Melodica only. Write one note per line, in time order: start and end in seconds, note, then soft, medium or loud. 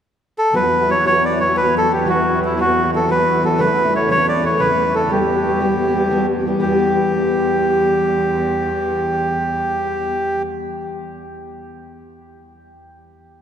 0.38 0.54 A4 medium
0.56 0.90 B4 medium
0.91 1.05 C#5 medium
1.06 1.24 C#5 loud
1.25 1.39 D5 medium
1.41 1.56 C#5 medium
1.57 1.75 B4 medium
1.77 1.92 A4 medium
1.93 2.08 G4 medium
2.09 2.40 F#4 medium
2.45 2.59 E4 medium
2.60 2.91 F#4 medium
2.95 3.10 A4 medium
3.11 3.45 B4 loud
3.45 3.60 A4 medium
3.59 3.94 B4 loud
3.96 4.09 C#5 medium
4.11 4.27 C#5 loud
4.29 4.44 D5 medium
4.46 4.61 C#5 medium
4.60 4.95 B4 medium
4.95 5.11 A4 medium
5.11 6.26 G4 medium
6.61 10.42 G4 medium